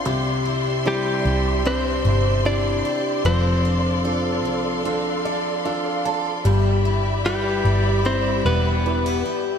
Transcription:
<<
  \new Staff \with { instrumentName = "String section" } { \time 4/4 \key c \major \tempo 4 = 75 << { <d'' c'''>1~ | <d'' c'''>1 | <d'' b''>1 | } \\ { <g' e''>1 | <a' f''>1 | <g' e''>1 | } >> }
  \new Staff \with { instrumentName = "Clean electric guitar" } { \time 4/4 \key c \major r4 <g g'>4 <c' c''>4 <d' d''>4 | <c' c''>2 r2 | r4 <g g'>4 <c' c''>8 <b b'>4 r8 | }
  \new Staff \with { instrumentName = "Grand piano" } { \time 4/4 \key c \major << { r1 | r2 r8 d''8 f''8 a''8 | r1 | } \\ { c4 <c' d' e'>4 <c' d' e'>4 <c' d' e'>4 | f4 <d' f' a'>4 <d' f' a'>4 <d' f' a'>4 | g4 <e' g' b'>4 <e' g' d''>4 <e' g' b'>4 | } >> }
  \new Staff \with { instrumentName = "Steel-string acoustic guitar" } { \time 4/4 \key c \major <c g'>8 e'8 g'8 e'8 g8 g'8 e'8 g'8 | <f a'>8 d'8 a'8 d'8 c'8 a'8 d'8 a'8 | <g, g'>8 e'8 g'8 e'8 g8 g'8 d'16 e'16 g'8 | }
  \new Staff \with { instrumentName = "Picked electric bass" } { \clef bass \time 4/4 \key c \major c,4. c,4 g,,4 r8 | f,,4. c,2~ c,8 | g,,4. g,,4 e,,4 r8 | }
>>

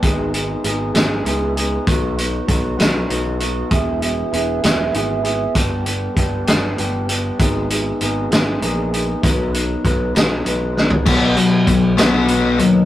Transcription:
<<
  \new Staff \with { instrumentName = "Clean electric guitar" } { \time 6/8 \key b \mixolydian \tempo 4. = 65 <gis, dis gis b dis' gis'>8 <gis b dis' gis'>8 <gis b dis' gis'>8 <gis b dis' gis'>8 <gis b dis' gis'>8 <gis b dis' gis'>8 | <b, fis b dis' fis'>8 <b dis' fis'>8 <fis b dis' fis'>8 <b dis' fis'>8 <fis b dis' fis'>8 <b dis' fis'>8 | <e, b, e b e' gis'>8 <e b e' gis'>8 <e b e' gis'>8 <e b e' gis'>8 <e b e' gis'>8 <e b e' gis'>8 | <g, d g b d' g'>8 <g b d' g'>8 <g b d' g'>8 <g b d' g'>8 <g b d' g'>8 <g b d' g'>8 |
<gis, dis gis b dis' gis'>8 <gis b dis' gis'>8 <gis b dis' gis'>8 <gis b dis' gis'>8 <gis b dis' gis'>8 <gis b dis' gis'>8 | <b, dis fis b dis' b'>8 <fis b dis' b'>8 <fis b dis' b'>8 <fis b dis' b'>8 <fis b dis' b'>8 <fis b dis' b'>8 | b,4 fis8 b8 b'8 dis'8 | }
  \new Staff \with { instrumentName = "Overdriven electric guitar" } { \clef bass \time 6/8 \key b \mixolydian r2. | r2. | r2. | r2. |
r2. | r2. | <b, fis b>8 <b, fis>8 <b, fis>8 <b, fis b>4 <b, fis>8 | }
  \new Staff \with { instrumentName = "Picked electric bass" } { \clef bass \time 6/8 \key b \mixolydian gis,,4 gis,,8 gis,,8 cis,4 | b,,4 b,,8 b,,8 b,,4 | e,,4 e,,8 e,,8 gis,,4 | g,,4 g,,8 g,,8 g,,4 |
gis,,4 gis,,8 gis,,8 ais,,4 | b,,4 b,,8 b,,8 b,,4 | b,,8 b,8 b,,8 b,,8 b,,8 dis,8 | }
  \new DrumStaff \with { instrumentName = "Drums" } \drummode { \time 6/8 <hh bd>8 hh8 hh8 <hh sn>8 hh8 hh8 | <hh bd>8 hh8 <hh bd>8 <hh sn>8 hh8 hh8 | <hh bd>8 hh8 hh8 <hh sn>8 hh8 hh8 | <hh bd>8 hh8 <hh bd>8 <hh sn>8 hh8 hh8 |
<hh bd>8 hh8 hh8 <hh sn>8 hh8 hh8 | <hh bd>8 hh8 <hh bd>8 <hh sn>8 hh8 sn16 tomfh16 | <cymc bd>8 hh8 <hh bd>8 <hh sn>8 hh8 hh8 | }
>>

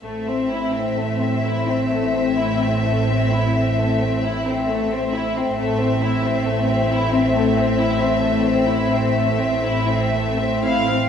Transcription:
<<
  \new Staff \with { instrumentName = "Violin section" } { \time 12/8 \key a \minor \tempo 4. = 43 e''1. | e''1~ e''4. f''8 | }
  \new Staff \with { instrumentName = "Viola section" } { \time 12/8 \key a \minor c'1. | c'1. | }
  \new Staff \with { instrumentName = "Violin section" } { \time 12/8 \key a \minor << { r1. | r1 r4. f''8 | } \\ { a16 c'16 e'16 c'16 a16 c'16 e'16 c'16 a16 c'16 e'16 c'16 a16 c'16 e'16 c'16 a16 c'16 e'16 c'16 a16 c'16 e'16 c'16 | a16 c'16 e'16 c'16 a16 c'16 e'16 c'16 a16 c'16 e'16 c'16 a16 c'16 e'16 c'16 a16 c'16 e'16 c'16 a16 c'16 e'16 c'16 | } >> }
  \new Staff \with { instrumentName = "Cello section" } { \clef bass \time 12/8 \key a \minor a,1. | a,1. | }
  \new Staff \with { instrumentName = "Double bass section" } { \clef bass \time 12/8 \key a \minor a,,1. | a,,1. | }
>>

